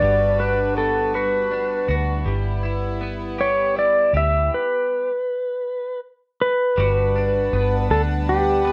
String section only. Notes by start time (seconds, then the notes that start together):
Already playing: G3 D4 F#4 B4
2.26 B3 E4
6.77 G3 D4 B4 F#5